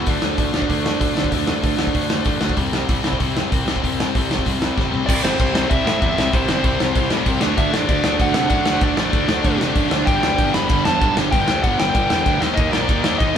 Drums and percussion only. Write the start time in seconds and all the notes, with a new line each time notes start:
0.06 kick, open hi-hat
0.22 snare
0.38 kick, open hi-hat
0.54 snare
0.62 kick
0.70 kick, open hi-hat
0.86 snare
1.01 kick, open hi-hat
1.17 snare
1.24 kick
1.32 kick, open hi-hat
1.47 snare
1.64 kick, open hi-hat
1.79 snare
1.87 kick
1.95 kick, open hi-hat
2.10 snare
2.25 kick, open hi-hat
2.41 snare
2.49 kick
2.57 kick, open hi-hat
2.73 snare
2.89 kick, open hi-hat
3.04 snare
3.13 kick
3.20 kick, open hi-hat
3.37 snare
3.52 kick, open hi-hat
3.68 snare
3.76 kick
3.84 kick, open hi-hat
4.00 snare
4.15 kick, open hi-hat
4.31 snare
4.39 kick
4.46 kick, open hi-hat
4.62 snare
4.78 kick, snare
4.94 floor tom
5.09 kick, crash
5.25 snare
5.40 kick, crash
5.55 snare
5.71 kick, crash
5.87 snare
6.02 kick, crash
6.18 snare
6.33 kick, crash
6.49 snare
6.64 kick, crash
6.80 snare
6.96 kick, crash
7.11 snare
7.26 kick, crash
7.41 snare
7.58 kick, crash
7.74 snare
7.89 kick, crash
8.04 snare
8.20 kick, crash
8.34 snare
8.50 kick, crash
8.66 snare
8.81 kick, crash
8.97 snare
9.13 kick, crash
9.29 snare
9.45 kick, crash
9.61 snare
9.76 kick, crash
9.91 snare
10.07 kick, crash
10.23 snare
10.38 kick, crash
10.54 snare
10.69 kick, crash
10.85 snare
11.02 kick, crash
11.17 snare
11.33 kick, crash
11.48 snare
11.64 kick, crash
11.80 snare
11.95 kick, crash
12.10 snare
12.26 kick, crash
12.42 snare
12.58 kick, crash
12.73 snare
12.89 kick, crash
13.04 snare
13.20 kick, crash